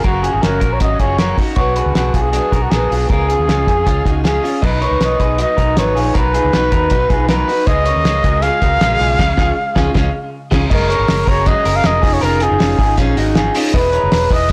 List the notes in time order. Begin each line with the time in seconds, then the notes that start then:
0.03 F#1 F#2 C#3 F#3 A#3 C#4 F#4 A#4, kick, closed hi-hat
0.23 A#3 C#4 F4 F#4 G#4, closed hi-hat
0.27 F#3
0.33 G#1 G#4
0.41 F#1 F#2 C#3 F#3 A#3 C#4 F#4 A#4, snare, closed hi-hat
0.60 A#1 A#3 C#4 F#4 A#4, kick, closed hi-hat
0.65 F#3
0.73 C#5
0.80 G#1 F#3 A#3 C#4 F#4 D#5, kick, closed hi-hat
0.84 F#4
0.99 F#1 F#3 A#3 C#4 F4 F#4 G#4 C#5, kick, closed hi-hat
1.18 F#2 C#3 F#3 A#3 C#4 F#4 A#4, snare, closed hi-hat
1.38 F#3 A#3 C#4 D#4 F#4, kick, open hi-hat
1.56 B1 B2 F#3 B3 D4 F#4 C#5, kick, closed hi-hat
1.76 B3 D4 F#4 G#4 B4, closed hi-hat
1.86 C#2
1.95 B1 B2 F#3 B3 D4 F#4, snare, closed hi-hat
2.14 B1 B3 D4 F4 F#4 G#4, kick, closed hi-hat
2.22 G#4
2.32 F#3 B3 D4 F#4 G#4, closed hi-hat
2.37 F#4
2.52 B1 D4 F#4 A#4, kick, closed hi-hat
2.56 B3
2.62 F#4
2.70 A#1 B2 F#3 B3 G#4, snare, closed hi-hat
2.74 D4 F#4
2.90 B1 D4 F4 F#4 G#4, open hi-hat
2.94 B3
3.09 C#2 C#3 G#3 C#4 F4 G#4 A#4, kick, closed hi-hat
3.28 C#4 F4 G#4, closed hi-hat
3.39 D#2
3.48 C#2 C#3 G#3 C#4 F4 G#4, snare, closed hi-hat
3.67 F2 C#4 F4 G#4, kick, closed hi-hat
3.86 C#2 G#3 C#4 F4 G#4, kick, closed hi-hat
4.05 C#2 C#4 D#4 F4 F#4 G#4, kick, closed hi-hat
4.24 C#3 G#3 C#4 F4 G#4, snare, closed hi-hat
4.28 G#4
4.42 C#4 F4 G#4, open hi-hat
4.62 B1 B2 F#3 B3 D#4 B4 D#5, kick, crash
4.81 B3 D#4 A#4 B4 C#5, closed hi-hat
4.91 C#2
5.00 B1 B2 F#3 B3 D#4 B4, snare, closed hi-hat
5.04 D#5
5.19 B1 B3 D#4 G#4 B4, kick, closed hi-hat
5.38 F#3 B3 D#4 F#4 B4 D#5, closed hi-hat
5.57 B1 D#4 F#4 A#4 B4, kick, closed hi-hat
5.62 B3
5.77 G#1 B2 F#3 B3 D#4 B4 C#5, snare, closed hi-hat
5.95 A#1 B3 D#4 F4 G#4 B4, open hi-hat
6.14 B1 B2 F#3 B3 D#4 F#4 A#4 B4, kick, closed hi-hat
6.33 B3 D#4 F4 G#4 B4, closed hi-hat
6.45 C#2
6.52 B1 B2 F#3 B3 D#4 F#4 B4, snare, closed hi-hat
6.72 D#2 B3 D#4 F#4 A#4 B4, kick, closed hi-hat
6.90 B1 F#3 B3 D#4 F#4, kick, closed hi-hat
6.95 B4
7.10 B1 B3 D#4 F4 G#4 B4, kick, closed hi-hat
7.28 B2 F#3 B3 D#4 F#4 A#4 B4, snare, closed hi-hat
7.47 B3 D#4 F#4 B4, open hi-hat
7.67 C#2 C#3 G#3 C#4 F4 G#4 D#5 F5, kick, closed hi-hat
7.86 C#4 F4 G#4 A#4 C#5, closed hi-hat
7.96 D#2
8.05 C#2 C#3 G#3 C#4 F4 G#4, snare, closed hi-hat
8.24 C#2 C#4 F4 F#4 G#4 A#4, kick, closed hi-hat
8.42 G#3 C#4 F4 G#4 F5, closed hi-hat
8.47 G#4
8.62 C#2 C#4 F4 F#4 G#4 A#4, kick, closed hi-hat
8.81 A#1 C#3 G#3 C#4 F4 G#4, snare, closed hi-hat
8.99 B1 C#4 F4 G#4, open hi-hat
9.19 C#2 C#3 G#3 C#4 F4 G#4, kick, snare, crash
9.37 C#2 C#4 F4 G#4, kick, snare
9.76 C#2 C#4 F4 G#4, kick, snare
9.94 C#2 G#3 C#4 F4 G#4, kick, snare
10.51 C#2 C#4 F4 G#4, kick, snare, crash
10.70 F#1 F#2 C#3 G#3 A#3 C#4 G#4 A#4 D#5, kick, crash
10.89 A#3 C#4 G#4 A#4 C#5, hi-hat pedal, open hi-hat
10.93 G#3
10.99 G#1
11.08 F#1 G#3 A#3 C#4 G#4, snare, hi-hat pedal, open hi-hat
11.26 F#1 A#3 C#4 F#4 G#4 A#4 C#5, kick, hi-hat pedal, open hi-hat
11.30 G#3
11.46 F#2 C#3 G#3 A#3 C#4 F#4 G#4 D#5, kick, hi-hat pedal, open hi-hat
11.64 F#1 G#3 A#3 C#4 F#4 G#4 A#4, hi-hat pedal, open hi-hat
11.76 F5
11.83 F1 G#3 A#3 C#4 G#4 D#5, snare, hi-hat pedal, open hi-hat
12.02 F1 D#4 F4 G#4, kick, hi-hat pedal, open hi-hat
12.06 C#4
12.13 C#5
12.21 F1 F3 C#4 D#4 F4 G#4 A#4, hi-hat pedal, open hi-hat
12.40 C#4 D#4 F4 G#4, hi-hat pedal, open hi-hat
12.51 F#1
12.59 F1 F3 C#4 D#4 F4 G#4, snare, hi-hat pedal, open hi-hat
12.78 G#1 C#4 D#4 F4 G#4, kick, hi-hat pedal, open hi-hat
12.97 A#1 F3 C#4 D#4 F4 G#4, kick, hi-hat pedal, open hi-hat
13.17 G#1 C#4 D#4 F#4 G#4, hi-hat pedal, open hi-hat
13.35 F3 C#4 D#4 F4 G#4, snare, hi-hat pedal, open hi-hat
13.54 C#4 D#4 F4 G#4, hi-hat pedal, open hi-hat
13.74 E1 E3 B3 E4 G#4 B4 D#5, kick, hi-hat pedal, open hi-hat
13.92 B3 E4 G#4 C#5 A#5, hi-hat pedal, open hi-hat
14.03 F#1
14.12 E1 E3 B3 E4 G#4, snare, hi-hat pedal, open hi-hat
14.30 E1 B3 E4 G#4 B4 D#5, kick, hi-hat pedal, open hi-hat
14.49 hi-hat pedal, open hi-hat